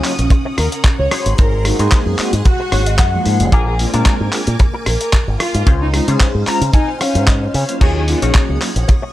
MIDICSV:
0, 0, Header, 1, 9, 480
1, 0, Start_track
1, 0, Tempo, 535714
1, 1239, Time_signature, 4, 2, 24, 8
1, 8178, End_track
2, 0, Start_track
2, 0, Title_t, "String machine"
2, 0, Program_c, 0, 50
2, 0, Note_on_c, 0, 61, 82
2, 0, Note_on_c, 0, 78, 75
2, 0, Note_on_c, 0, 87, 90
2, 982, Note_off_c, 0, 87, 0
2, 983, Note_off_c, 0, 61, 0
2, 997, Note_on_c, 0, 68, 81
2, 999, Note_on_c, 0, 84, 90
2, 3123, Note_off_c, 0, 78, 0
2, 3137, Note_off_c, 0, 68, 0
2, 3138, Note_off_c, 0, 84, 0
2, 3158, Note_on_c, 0, 80, 74
2, 3158, Note_on_c, 0, 86, 90
2, 3159, Note_on_c, 0, 70, 80
2, 5059, Note_off_c, 0, 80, 0
2, 5060, Note_off_c, 0, 70, 0
2, 5060, Note_off_c, 0, 86, 0
2, 5077, Note_on_c, 0, 72, 80
2, 5077, Note_on_c, 0, 77, 75
2, 6979, Note_off_c, 0, 72, 0
2, 6979, Note_off_c, 0, 77, 0
2, 6999, Note_on_c, 0, 73, 83
2, 6999, Note_on_c, 0, 87, 92
2, 7000, Note_on_c, 0, 78, 77
2, 8178, Note_off_c, 0, 73, 0
2, 8178, Note_off_c, 0, 78, 0
2, 8178, Note_off_c, 0, 87, 0
2, 8178, End_track
3, 0, Start_track
3, 0, Title_t, "Clean electric guitar"
3, 0, Program_c, 1, 27
3, 997, Note_on_c, 1, 63, 100
3, 1002, Note_on_c, 1, 68, 94
3, 1003, Note_on_c, 1, 66, 90
3, 1006, Note_on_c, 1, 72, 110
3, 1479, Note_off_c, 1, 63, 0
3, 1480, Note_off_c, 1, 66, 0
3, 1481, Note_off_c, 1, 68, 0
3, 1482, Note_off_c, 1, 72, 0
3, 1604, Note_on_c, 1, 63, 91
3, 1607, Note_on_c, 1, 66, 85
3, 1610, Note_on_c, 1, 68, 86
3, 1612, Note_on_c, 1, 72, 107
3, 1782, Note_off_c, 1, 63, 0
3, 1783, Note_off_c, 1, 66, 0
3, 1784, Note_off_c, 1, 68, 0
3, 1786, Note_off_c, 1, 72, 0
3, 2442, Note_on_c, 1, 73, 76
3, 2560, Note_off_c, 1, 73, 0
3, 2570, Note_on_c, 1, 75, 74
3, 2673, Note_off_c, 1, 75, 0
3, 2679, Note_on_c, 1, 78, 76
3, 3126, Note_off_c, 1, 78, 0
3, 3156, Note_on_c, 1, 62, 118
3, 3161, Note_on_c, 1, 65, 109
3, 3161, Note_on_c, 1, 68, 110
3, 3166, Note_on_c, 1, 70, 127
3, 3342, Note_off_c, 1, 62, 0
3, 3343, Note_off_c, 1, 65, 0
3, 3345, Note_off_c, 1, 68, 0
3, 3346, Note_off_c, 1, 70, 0
3, 3524, Note_on_c, 1, 62, 94
3, 3527, Note_on_c, 1, 65, 89
3, 3527, Note_on_c, 1, 68, 87
3, 3533, Note_on_c, 1, 70, 107
3, 3702, Note_off_c, 1, 62, 0
3, 3703, Note_off_c, 1, 65, 0
3, 3704, Note_off_c, 1, 68, 0
3, 3705, Note_off_c, 1, 70, 0
3, 5074, Note_on_c, 1, 61, 115
3, 5077, Note_on_c, 1, 65, 110
3, 5078, Note_on_c, 1, 68, 108
3, 5083, Note_on_c, 1, 72, 127
3, 5261, Note_off_c, 1, 61, 0
3, 5262, Note_off_c, 1, 65, 0
3, 5263, Note_off_c, 1, 68, 0
3, 5265, Note_off_c, 1, 72, 0
3, 5444, Note_on_c, 1, 61, 96
3, 5448, Note_on_c, 1, 65, 85
3, 5448, Note_on_c, 1, 68, 86
3, 5453, Note_on_c, 1, 72, 103
3, 5622, Note_off_c, 1, 61, 0
3, 5623, Note_off_c, 1, 65, 0
3, 5624, Note_off_c, 1, 68, 0
3, 5625, Note_off_c, 1, 72, 0
3, 5802, Note_on_c, 1, 82, 79
3, 6023, Note_off_c, 1, 82, 0
3, 6042, Note_on_c, 1, 80, 77
3, 6263, Note_off_c, 1, 80, 0
3, 6283, Note_on_c, 1, 77, 77
3, 6504, Note_off_c, 1, 77, 0
3, 6518, Note_on_c, 1, 75, 76
3, 6742, Note_off_c, 1, 75, 0
3, 6759, Note_on_c, 1, 73, 75
3, 6982, Note_off_c, 1, 73, 0
3, 6994, Note_on_c, 1, 63, 114
3, 6998, Note_on_c, 1, 66, 110
3, 6998, Note_on_c, 1, 70, 107
3, 7004, Note_on_c, 1, 73, 127
3, 7181, Note_off_c, 1, 63, 0
3, 7182, Note_off_c, 1, 66, 0
3, 7183, Note_off_c, 1, 70, 0
3, 7185, Note_off_c, 1, 73, 0
3, 7363, Note_on_c, 1, 63, 94
3, 7366, Note_on_c, 1, 66, 84
3, 7367, Note_on_c, 1, 70, 87
3, 7372, Note_on_c, 1, 73, 102
3, 7541, Note_off_c, 1, 63, 0
3, 7542, Note_off_c, 1, 66, 0
3, 7544, Note_off_c, 1, 70, 0
3, 7544, Note_off_c, 1, 73, 0
3, 8178, End_track
4, 0, Start_track
4, 0, Title_t, "Violin section"
4, 0, Program_c, 2, 48
4, 519, Note_on_c, 2, 70, 90
4, 601, Note_off_c, 2, 70, 0
4, 648, Note_on_c, 2, 70, 76
4, 719, Note_off_c, 2, 70, 0
4, 888, Note_on_c, 2, 73, 92
4, 1051, Note_off_c, 2, 73, 0
4, 1240, Note_on_c, 2, 70, 95
4, 1450, Note_off_c, 2, 70, 0
4, 2201, Note_on_c, 2, 66, 98
4, 2876, Note_off_c, 2, 66, 0
4, 3158, Note_on_c, 2, 68, 89
4, 3241, Note_off_c, 2, 68, 0
4, 3290, Note_on_c, 2, 68, 80
4, 3360, Note_off_c, 2, 68, 0
4, 4360, Note_on_c, 2, 70, 90
4, 4442, Note_off_c, 2, 70, 0
4, 4489, Note_on_c, 2, 70, 74
4, 4560, Note_off_c, 2, 70, 0
4, 4839, Note_on_c, 2, 65, 94
4, 5049, Note_off_c, 2, 65, 0
4, 5209, Note_on_c, 2, 63, 90
4, 5280, Note_off_c, 2, 63, 0
4, 5322, Note_on_c, 2, 63, 79
4, 5403, Note_off_c, 2, 63, 0
4, 6040, Note_on_c, 2, 63, 96
4, 6250, Note_off_c, 2, 63, 0
4, 6284, Note_on_c, 2, 61, 93
4, 6650, Note_off_c, 2, 61, 0
4, 7002, Note_on_c, 2, 68, 89
4, 7083, Note_off_c, 2, 68, 0
4, 7129, Note_on_c, 2, 68, 77
4, 7200, Note_off_c, 2, 68, 0
4, 8178, End_track
5, 0, Start_track
5, 0, Title_t, "Analog polysynth"
5, 0, Program_c, 3, 90
5, 38, Note_on_c, 3, 54, 94
5, 40, Note_on_c, 3, 58, 86
5, 41, Note_on_c, 3, 61, 84
5, 44, Note_on_c, 3, 63, 86
5, 46, Note_on_c, 3, 65, 105
5, 110, Note_off_c, 3, 54, 0
5, 111, Note_off_c, 3, 58, 0
5, 111, Note_off_c, 3, 61, 0
5, 113, Note_off_c, 3, 63, 0
5, 114, Note_off_c, 3, 65, 0
5, 1476, Note_on_c, 3, 56, 96
5, 1479, Note_on_c, 3, 58, 90
5, 1480, Note_on_c, 3, 60, 88
5, 1484, Note_on_c, 3, 63, 90
5, 1486, Note_on_c, 3, 66, 110
5, 1575, Note_off_c, 3, 56, 0
5, 1577, Note_off_c, 3, 58, 0
5, 1577, Note_off_c, 3, 60, 0
5, 1579, Note_off_c, 3, 63, 0
5, 1580, Note_off_c, 3, 66, 0
5, 1608, Note_on_c, 3, 56, 91
5, 1610, Note_on_c, 3, 58, 82
5, 1612, Note_on_c, 3, 60, 82
5, 1614, Note_on_c, 3, 63, 82
5, 1618, Note_on_c, 3, 68, 100
5, 1932, Note_off_c, 3, 56, 0
5, 1934, Note_off_c, 3, 58, 0
5, 1935, Note_off_c, 3, 60, 0
5, 1936, Note_off_c, 3, 63, 0
5, 1938, Note_off_c, 3, 68, 0
5, 1960, Note_on_c, 3, 56, 94
5, 1961, Note_on_c, 3, 58, 86
5, 1965, Note_on_c, 3, 60, 86
5, 1966, Note_on_c, 3, 63, 82
5, 1969, Note_on_c, 3, 66, 104
5, 2073, Note_off_c, 3, 56, 0
5, 2074, Note_off_c, 3, 58, 0
5, 2076, Note_off_c, 3, 60, 0
5, 2076, Note_off_c, 3, 63, 0
5, 2078, Note_off_c, 3, 66, 0
5, 2437, Note_on_c, 3, 56, 77
5, 2439, Note_on_c, 3, 58, 74
5, 2443, Note_on_c, 3, 60, 74
5, 2446, Note_on_c, 3, 63, 73
5, 2447, Note_on_c, 3, 66, 86
5, 2509, Note_off_c, 3, 56, 0
5, 2510, Note_off_c, 3, 58, 0
5, 2512, Note_off_c, 3, 60, 0
5, 2514, Note_off_c, 3, 63, 0
5, 2514, Note_off_c, 3, 66, 0
5, 2807, Note_on_c, 3, 56, 100
5, 2808, Note_on_c, 3, 58, 89
5, 2812, Note_on_c, 3, 63, 90
5, 2814, Note_on_c, 3, 53, 107
5, 3145, Note_off_c, 3, 56, 0
5, 3146, Note_off_c, 3, 58, 0
5, 3148, Note_off_c, 3, 63, 0
5, 3149, Note_off_c, 3, 53, 0
5, 3396, Note_on_c, 3, 56, 99
5, 3398, Note_on_c, 3, 58, 87
5, 3401, Note_on_c, 3, 60, 89
5, 3403, Note_on_c, 3, 62, 90
5, 3406, Note_on_c, 3, 65, 106
5, 3496, Note_off_c, 3, 56, 0
5, 3496, Note_off_c, 3, 58, 0
5, 3498, Note_off_c, 3, 60, 0
5, 3499, Note_off_c, 3, 62, 0
5, 3500, Note_off_c, 3, 65, 0
5, 3525, Note_on_c, 3, 56, 98
5, 3526, Note_on_c, 3, 58, 89
5, 3527, Note_on_c, 3, 60, 90
5, 3531, Note_on_c, 3, 62, 88
5, 3532, Note_on_c, 3, 70, 112
5, 3851, Note_off_c, 3, 56, 0
5, 3852, Note_off_c, 3, 58, 0
5, 3852, Note_off_c, 3, 60, 0
5, 3854, Note_off_c, 3, 62, 0
5, 3855, Note_off_c, 3, 70, 0
5, 3876, Note_on_c, 3, 56, 95
5, 3879, Note_on_c, 3, 58, 87
5, 3880, Note_on_c, 3, 60, 85
5, 3883, Note_on_c, 3, 62, 87
5, 3886, Note_on_c, 3, 65, 104
5, 3949, Note_off_c, 3, 56, 0
5, 3950, Note_off_c, 3, 58, 0
5, 3951, Note_off_c, 3, 60, 0
5, 3952, Note_off_c, 3, 62, 0
5, 3954, Note_off_c, 3, 65, 0
5, 5317, Note_on_c, 3, 56, 100
5, 5319, Note_on_c, 3, 60, 90
5, 5321, Note_on_c, 3, 61, 89
5, 5323, Note_on_c, 3, 63, 89
5, 5325, Note_on_c, 3, 65, 106
5, 5416, Note_off_c, 3, 56, 0
5, 5417, Note_off_c, 3, 60, 0
5, 5418, Note_off_c, 3, 61, 0
5, 5419, Note_off_c, 3, 63, 0
5, 5420, Note_off_c, 3, 65, 0
5, 5444, Note_on_c, 3, 56, 93
5, 5447, Note_on_c, 3, 72, 81
5, 5449, Note_on_c, 3, 61, 80
5, 5452, Note_on_c, 3, 63, 84
5, 5455, Note_on_c, 3, 68, 98
5, 5771, Note_off_c, 3, 56, 0
5, 5772, Note_off_c, 3, 72, 0
5, 5773, Note_off_c, 3, 61, 0
5, 5775, Note_off_c, 3, 63, 0
5, 5776, Note_off_c, 3, 68, 0
5, 5796, Note_on_c, 3, 56, 94
5, 5799, Note_on_c, 3, 60, 83
5, 5800, Note_on_c, 3, 61, 82
5, 5803, Note_on_c, 3, 63, 82
5, 5806, Note_on_c, 3, 65, 102
5, 5911, Note_off_c, 3, 56, 0
5, 5913, Note_off_c, 3, 60, 0
5, 5914, Note_off_c, 3, 61, 0
5, 5915, Note_off_c, 3, 63, 0
5, 5916, Note_off_c, 3, 65, 0
5, 6883, Note_on_c, 3, 54, 80
5, 6887, Note_on_c, 3, 58, 75
5, 6887, Note_on_c, 3, 61, 73
5, 6889, Note_on_c, 3, 63, 75
5, 6892, Note_on_c, 3, 65, 89
5, 7210, Note_off_c, 3, 54, 0
5, 7212, Note_off_c, 3, 58, 0
5, 7212, Note_off_c, 3, 61, 0
5, 7213, Note_off_c, 3, 63, 0
5, 7215, Note_off_c, 3, 65, 0
5, 7237, Note_on_c, 3, 54, 96
5, 7239, Note_on_c, 3, 58, 90
5, 7240, Note_on_c, 3, 61, 85
5, 7243, Note_on_c, 3, 63, 88
5, 7246, Note_on_c, 3, 65, 107
5, 7336, Note_off_c, 3, 54, 0
5, 7337, Note_off_c, 3, 58, 0
5, 7338, Note_off_c, 3, 61, 0
5, 7339, Note_off_c, 3, 63, 0
5, 7340, Note_off_c, 3, 65, 0
5, 7360, Note_on_c, 3, 54, 99
5, 7362, Note_on_c, 3, 58, 91
5, 7366, Note_on_c, 3, 61, 92
5, 7367, Note_on_c, 3, 63, 91
5, 7371, Note_on_c, 3, 68, 108
5, 7689, Note_off_c, 3, 54, 0
5, 7690, Note_off_c, 3, 58, 0
5, 7692, Note_off_c, 3, 61, 0
5, 7692, Note_off_c, 3, 63, 0
5, 7694, Note_off_c, 3, 68, 0
5, 7714, Note_on_c, 3, 54, 95
5, 7716, Note_on_c, 3, 58, 87
5, 7717, Note_on_c, 3, 61, 89
5, 7719, Note_on_c, 3, 63, 84
5, 7722, Note_on_c, 3, 65, 102
5, 7788, Note_off_c, 3, 54, 0
5, 7789, Note_off_c, 3, 58, 0
5, 7789, Note_off_c, 3, 61, 0
5, 7790, Note_off_c, 3, 63, 0
5, 7792, Note_off_c, 3, 65, 0
5, 8178, End_track
6, 0, Start_track
6, 0, Title_t, "Fingered electric bass"
6, 0, Program_c, 4, 33
6, 168, Note_on_c, 4, 34, 98
6, 235, Note_off_c, 4, 34, 0
6, 519, Note_on_c, 4, 39, 80
6, 597, Note_off_c, 4, 39, 0
6, 888, Note_on_c, 4, 37, 96
6, 955, Note_off_c, 4, 37, 0
6, 1127, Note_on_c, 4, 32, 102
6, 1195, Note_off_c, 4, 32, 0
6, 1245, Note_on_c, 4, 32, 101
6, 1529, Note_off_c, 4, 32, 0
6, 1606, Note_on_c, 4, 44, 84
6, 1674, Note_off_c, 4, 44, 0
6, 1845, Note_on_c, 4, 42, 92
6, 1914, Note_off_c, 4, 42, 0
6, 2087, Note_on_c, 4, 44, 103
6, 2155, Note_off_c, 4, 44, 0
6, 2439, Note_on_c, 4, 32, 97
6, 2676, Note_off_c, 4, 32, 0
6, 2681, Note_on_c, 4, 42, 90
6, 2832, Note_off_c, 4, 42, 0
6, 2920, Note_on_c, 4, 44, 88
6, 3048, Note_on_c, 4, 30, 100
6, 3061, Note_off_c, 4, 44, 0
6, 3115, Note_off_c, 4, 30, 0
6, 3156, Note_on_c, 4, 34, 103
6, 3445, Note_off_c, 4, 34, 0
6, 3528, Note_on_c, 4, 46, 87
6, 3595, Note_off_c, 4, 46, 0
6, 3768, Note_on_c, 4, 44, 93
6, 3835, Note_off_c, 4, 44, 0
6, 4008, Note_on_c, 4, 46, 102
6, 4075, Note_off_c, 4, 46, 0
6, 4359, Note_on_c, 4, 34, 82
6, 4437, Note_off_c, 4, 34, 0
6, 4728, Note_on_c, 4, 32, 99
6, 4795, Note_off_c, 4, 32, 0
6, 4969, Note_on_c, 4, 44, 104
6, 5036, Note_off_c, 4, 44, 0
6, 5079, Note_on_c, 4, 37, 98
6, 5366, Note_off_c, 4, 37, 0
6, 5446, Note_on_c, 4, 49, 88
6, 5514, Note_off_c, 4, 49, 0
6, 5685, Note_on_c, 4, 44, 93
6, 5754, Note_off_c, 4, 44, 0
6, 5925, Note_on_c, 4, 49, 100
6, 5994, Note_off_c, 4, 49, 0
6, 6407, Note_on_c, 4, 44, 93
6, 6688, Note_off_c, 4, 44, 0
6, 6759, Note_on_c, 4, 49, 97
6, 6837, Note_off_c, 4, 49, 0
6, 7000, Note_on_c, 4, 39, 96
6, 7287, Note_off_c, 4, 39, 0
6, 7369, Note_on_c, 4, 34, 87
6, 7436, Note_off_c, 4, 34, 0
6, 7610, Note_on_c, 4, 37, 95
6, 7676, Note_off_c, 4, 37, 0
6, 7847, Note_on_c, 4, 34, 100
6, 7915, Note_off_c, 4, 34, 0
6, 8178, End_track
7, 0, Start_track
7, 0, Title_t, "Muted clean electric guitar strokes"
7, 37, Note_on_c, 9, 29, 37
7, 126, Note_off_c, 9, 29, 0
7, 277, Note_on_c, 9, 29, 92
7, 366, Note_off_c, 9, 29, 0
7, 406, Note_on_c, 9, 29, 89
7, 496, Note_off_c, 9, 29, 0
7, 519, Note_on_c, 9, 29, 36
7, 609, Note_off_c, 9, 29, 0
7, 1959, Note_on_c, 9, 29, 37
7, 2049, Note_off_c, 9, 29, 0
7, 2198, Note_on_c, 9, 29, 96
7, 2287, Note_off_c, 9, 29, 0
7, 2327, Note_on_c, 9, 29, 93
7, 2417, Note_off_c, 9, 29, 0
7, 2437, Note_on_c, 9, 29, 37
7, 2527, Note_off_c, 9, 29, 0
7, 3876, Note_on_c, 9, 29, 37
7, 3966, Note_off_c, 9, 29, 0
7, 4115, Note_on_c, 9, 29, 91
7, 4205, Note_off_c, 9, 29, 0
7, 4243, Note_on_c, 9, 29, 92
7, 4333, Note_off_c, 9, 29, 0
7, 4355, Note_on_c, 9, 29, 35
7, 4445, Note_off_c, 9, 29, 0
7, 5796, Note_on_c, 9, 29, 36
7, 5886, Note_off_c, 9, 29, 0
7, 6035, Note_on_c, 9, 29, 93
7, 6125, Note_off_c, 9, 29, 0
7, 6165, Note_on_c, 9, 29, 90
7, 6254, Note_off_c, 9, 29, 0
7, 6277, Note_on_c, 9, 29, 36
7, 6367, Note_off_c, 9, 29, 0
7, 7715, Note_on_c, 9, 29, 36
7, 7805, Note_off_c, 9, 29, 0
7, 7955, Note_on_c, 9, 29, 93
7, 8044, Note_off_c, 9, 29, 0
7, 8085, Note_on_c, 9, 29, 93
7, 8174, Note_off_c, 9, 29, 0
7, 8178, End_track
8, 0, Start_track
8, 0, Title_t, "Muted fingered electric bass strokes"
8, 1959, Note_on_c, 9, 29, 44
8, 2049, Note_off_c, 9, 29, 0
8, 5798, Note_on_c, 9, 29, 45
8, 5888, Note_off_c, 9, 29, 0
8, 8178, End_track
9, 0, Start_track
9, 0, Title_t, "Drums"
9, 38, Note_on_c, 9, 39, 59
9, 39, Note_on_c, 9, 46, 97
9, 127, Note_off_c, 9, 39, 0
9, 129, Note_off_c, 9, 46, 0
9, 168, Note_on_c, 9, 42, 66
9, 257, Note_off_c, 9, 42, 0
9, 272, Note_on_c, 9, 36, 122
9, 279, Note_on_c, 9, 42, 52
9, 362, Note_off_c, 9, 36, 0
9, 369, Note_off_c, 9, 42, 0
9, 518, Note_on_c, 9, 37, 68
9, 518, Note_on_c, 9, 46, 111
9, 607, Note_off_c, 9, 37, 0
9, 607, Note_off_c, 9, 46, 0
9, 647, Note_on_c, 9, 42, 65
9, 737, Note_off_c, 9, 42, 0
9, 755, Note_on_c, 9, 36, 116
9, 758, Note_on_c, 9, 39, 117
9, 759, Note_on_c, 9, 42, 53
9, 845, Note_off_c, 9, 36, 0
9, 847, Note_off_c, 9, 39, 0
9, 849, Note_off_c, 9, 42, 0
9, 998, Note_on_c, 9, 37, 85
9, 998, Note_on_c, 9, 46, 95
9, 1088, Note_off_c, 9, 37, 0
9, 1088, Note_off_c, 9, 46, 0
9, 1128, Note_on_c, 9, 42, 64
9, 1217, Note_off_c, 9, 42, 0
9, 1238, Note_on_c, 9, 42, 54
9, 1244, Note_on_c, 9, 36, 123
9, 1328, Note_off_c, 9, 42, 0
9, 1333, Note_off_c, 9, 36, 0
9, 1478, Note_on_c, 9, 37, 67
9, 1478, Note_on_c, 9, 46, 104
9, 1568, Note_off_c, 9, 37, 0
9, 1568, Note_off_c, 9, 46, 0
9, 1607, Note_on_c, 9, 42, 67
9, 1697, Note_off_c, 9, 42, 0
9, 1716, Note_on_c, 9, 39, 112
9, 1717, Note_on_c, 9, 42, 52
9, 1722, Note_on_c, 9, 36, 117
9, 1806, Note_off_c, 9, 39, 0
9, 1807, Note_off_c, 9, 42, 0
9, 1811, Note_off_c, 9, 36, 0
9, 1957, Note_on_c, 9, 39, 58
9, 1959, Note_on_c, 9, 46, 93
9, 2047, Note_off_c, 9, 39, 0
9, 2049, Note_off_c, 9, 46, 0
9, 2087, Note_on_c, 9, 42, 66
9, 2177, Note_off_c, 9, 42, 0
9, 2198, Note_on_c, 9, 42, 53
9, 2200, Note_on_c, 9, 36, 115
9, 2288, Note_off_c, 9, 42, 0
9, 2290, Note_off_c, 9, 36, 0
9, 2438, Note_on_c, 9, 37, 72
9, 2438, Note_on_c, 9, 46, 105
9, 2528, Note_off_c, 9, 37, 0
9, 2528, Note_off_c, 9, 46, 0
9, 2566, Note_on_c, 9, 42, 68
9, 2656, Note_off_c, 9, 42, 0
9, 2676, Note_on_c, 9, 39, 116
9, 2678, Note_on_c, 9, 42, 55
9, 2680, Note_on_c, 9, 36, 118
9, 2766, Note_off_c, 9, 39, 0
9, 2767, Note_off_c, 9, 42, 0
9, 2769, Note_off_c, 9, 36, 0
9, 2917, Note_on_c, 9, 46, 91
9, 3006, Note_off_c, 9, 46, 0
9, 3046, Note_on_c, 9, 42, 70
9, 3136, Note_off_c, 9, 42, 0
9, 3157, Note_on_c, 9, 36, 117
9, 3157, Note_on_c, 9, 42, 55
9, 3247, Note_off_c, 9, 36, 0
9, 3247, Note_off_c, 9, 42, 0
9, 3398, Note_on_c, 9, 46, 106
9, 3488, Note_off_c, 9, 46, 0
9, 3527, Note_on_c, 9, 42, 67
9, 3616, Note_off_c, 9, 42, 0
9, 3636, Note_on_c, 9, 36, 121
9, 3636, Note_on_c, 9, 39, 121
9, 3638, Note_on_c, 9, 42, 56
9, 3726, Note_off_c, 9, 36, 0
9, 3726, Note_off_c, 9, 39, 0
9, 3727, Note_off_c, 9, 42, 0
9, 3875, Note_on_c, 9, 39, 60
9, 3877, Note_on_c, 9, 46, 92
9, 3965, Note_off_c, 9, 39, 0
9, 3967, Note_off_c, 9, 46, 0
9, 4005, Note_on_c, 9, 42, 71
9, 4094, Note_off_c, 9, 42, 0
9, 4117, Note_on_c, 9, 42, 55
9, 4121, Note_on_c, 9, 36, 102
9, 4206, Note_off_c, 9, 42, 0
9, 4210, Note_off_c, 9, 36, 0
9, 4357, Note_on_c, 9, 37, 71
9, 4357, Note_on_c, 9, 46, 103
9, 4447, Note_off_c, 9, 37, 0
9, 4447, Note_off_c, 9, 46, 0
9, 4486, Note_on_c, 9, 42, 70
9, 4576, Note_off_c, 9, 42, 0
9, 4598, Note_on_c, 9, 36, 116
9, 4598, Note_on_c, 9, 39, 119
9, 4600, Note_on_c, 9, 42, 56
9, 4688, Note_off_c, 9, 36, 0
9, 4688, Note_off_c, 9, 39, 0
9, 4689, Note_off_c, 9, 42, 0
9, 4839, Note_on_c, 9, 37, 88
9, 4839, Note_on_c, 9, 46, 89
9, 4929, Note_off_c, 9, 37, 0
9, 4929, Note_off_c, 9, 46, 0
9, 4968, Note_on_c, 9, 42, 70
9, 5058, Note_off_c, 9, 42, 0
9, 5078, Note_on_c, 9, 36, 126
9, 5078, Note_on_c, 9, 42, 58
9, 5168, Note_off_c, 9, 36, 0
9, 5168, Note_off_c, 9, 42, 0
9, 5319, Note_on_c, 9, 37, 65
9, 5319, Note_on_c, 9, 46, 107
9, 5408, Note_off_c, 9, 37, 0
9, 5408, Note_off_c, 9, 46, 0
9, 5447, Note_on_c, 9, 42, 69
9, 5537, Note_off_c, 9, 42, 0
9, 5558, Note_on_c, 9, 39, 124
9, 5559, Note_on_c, 9, 36, 106
9, 5559, Note_on_c, 9, 42, 57
9, 5647, Note_off_c, 9, 39, 0
9, 5648, Note_off_c, 9, 36, 0
9, 5649, Note_off_c, 9, 42, 0
9, 5798, Note_on_c, 9, 39, 64
9, 5799, Note_on_c, 9, 46, 91
9, 5888, Note_off_c, 9, 39, 0
9, 5889, Note_off_c, 9, 46, 0
9, 5928, Note_on_c, 9, 42, 70
9, 6018, Note_off_c, 9, 42, 0
9, 6035, Note_on_c, 9, 36, 111
9, 6039, Note_on_c, 9, 42, 56
9, 6124, Note_off_c, 9, 36, 0
9, 6129, Note_off_c, 9, 42, 0
9, 6279, Note_on_c, 9, 37, 68
9, 6279, Note_on_c, 9, 46, 106
9, 6369, Note_off_c, 9, 37, 0
9, 6369, Note_off_c, 9, 46, 0
9, 6408, Note_on_c, 9, 42, 71
9, 6498, Note_off_c, 9, 42, 0
9, 6518, Note_on_c, 9, 39, 125
9, 6519, Note_on_c, 9, 36, 117
9, 6520, Note_on_c, 9, 42, 57
9, 6608, Note_off_c, 9, 36, 0
9, 6608, Note_off_c, 9, 39, 0
9, 6609, Note_off_c, 9, 42, 0
9, 6759, Note_on_c, 9, 46, 92
9, 6849, Note_off_c, 9, 46, 0
9, 6888, Note_on_c, 9, 42, 72
9, 6978, Note_off_c, 9, 42, 0
9, 6999, Note_on_c, 9, 36, 112
9, 7000, Note_on_c, 9, 42, 55
9, 7000, Note_on_c, 9, 49, 75
9, 7089, Note_off_c, 9, 36, 0
9, 7089, Note_off_c, 9, 42, 0
9, 7089, Note_off_c, 9, 49, 0
9, 7239, Note_on_c, 9, 46, 108
9, 7328, Note_off_c, 9, 46, 0
9, 7368, Note_on_c, 9, 42, 70
9, 7458, Note_off_c, 9, 42, 0
9, 7478, Note_on_c, 9, 39, 126
9, 7479, Note_on_c, 9, 42, 57
9, 7481, Note_on_c, 9, 36, 124
9, 7567, Note_off_c, 9, 39, 0
9, 7569, Note_off_c, 9, 42, 0
9, 7571, Note_off_c, 9, 36, 0
9, 7719, Note_on_c, 9, 39, 65
9, 7721, Note_on_c, 9, 46, 94
9, 7809, Note_off_c, 9, 39, 0
9, 7810, Note_off_c, 9, 46, 0
9, 7849, Note_on_c, 9, 42, 68
9, 7939, Note_off_c, 9, 42, 0
9, 7962, Note_on_c, 9, 42, 55
9, 7965, Note_on_c, 9, 36, 107
9, 8051, Note_off_c, 9, 42, 0
9, 8054, Note_off_c, 9, 36, 0
9, 8178, End_track
0, 0, End_of_file